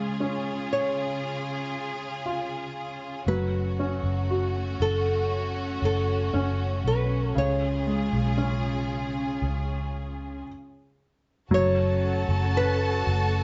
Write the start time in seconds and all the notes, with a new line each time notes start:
Already playing: C#3 G#3 C#4 F4 G#4
0.20 C#4
0.73 C#5
2.26 F4
3.26 F#1 F#3 A3 C#4 F#4 B4
3.79 C#4
4.04 F#1
4.31 F#4
4.80 F#1 A4
5.82 F#1 A4
6.34 F#1 C#4
6.84 B1 B4
7.34 C#2 C#3 F4 G#4 C#5
7.87 G#3
8.13 B1
8.38 C#4
9.42 C#2
11.51 F#1 F#3 A3 C#4 F#4 A4 C#5 A5
12.29 F#1
12.57 B4
13.07 F#1